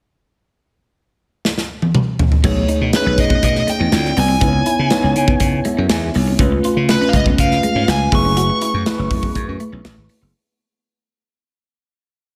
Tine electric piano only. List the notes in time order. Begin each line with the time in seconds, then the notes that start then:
2.43 A3 D#4 G#4 C#5
2.93 A3 C#4 G#4 C#5
2.99 D#4
3.91 C4 E4 F4 D5
4.40 B3 D#4 E4 B4
4.48 C#5
4.90 B3 D#4 E4 C#5
5.66 E5
5.90 G#5
6.38 A3 C#4 F4 B4
6.88 A3 C#4 F4 B4
8.12 A3 E4 G#4 B4
8.86 A3 E4 G#4 B4